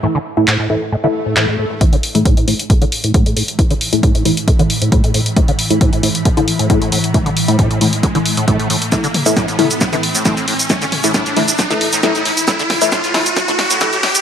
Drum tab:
HH |----------------|xxoxxxoxxxoxxxox|xxoxxxoxxxoxxxox|xxoxxxoxxxoxxxox|
SH |----------------|----------------|----------------|----------------|
CP |----x-------x---|----------------|----------------|----------------|
SD |----------------|----------------|----------------|----------------|
T2 |----------------|----------------|----------------|----------------|
BD |----------------|o---o---o---o---|o---o---o---o---|o---o---o---o---|

HH |xxoxxxoxxxoxxxox|xxoxxxoxxxoxxxox|xxoxxxoxxxoxxxox|xxoxxxoxxxoxxxox|
SH |----------------|xx-xxx-xxx-xxx-x|xx-xxx-xxx-xxx-x|xx-xxx-xxx-xxx-x|
CP |----------------|----------------|----------------|----------------|
SD |----------------|o---o---o---o---|o---o---o---o---|o-o-o-o-o-o-o-o-|
T2 |----------------|--o---o---------|--o---o---------|--o---o---------|
BD |o---o---o---o---|o---o---o---o---|o---o---o---o---|o---o---o---o---|